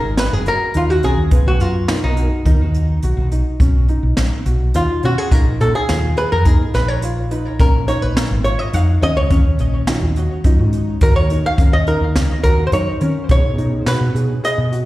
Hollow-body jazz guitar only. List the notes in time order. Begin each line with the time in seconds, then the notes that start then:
Already playing: A#4
0.19 B4
0.33 G#4
0.48 A#4
0.77 F4
0.90 F#4
1.04 G#4
1.48 F#4
1.61 F4
2.04 D#4
4.76 F4
5.05 F#4
5.18 G#4
5.32 A#4
5.61 A4
5.75 G#4
6.18 B4
6.32 A#4
6.46 G#4
6.75 B4
6.88 C#5
7.60 A#4
7.88 C#5
8.02 B4
8.44 C#5
8.59 D#5
8.74 F5
9.03 D#5
9.17 C#5
11.03 A#4
11.16 C#5
11.46 F5
11.73 D#5
11.88 A#4
12.44 A#4
12.67 C5
12.73 C#5
13.31 C#5
13.88 B4
14.45 D#5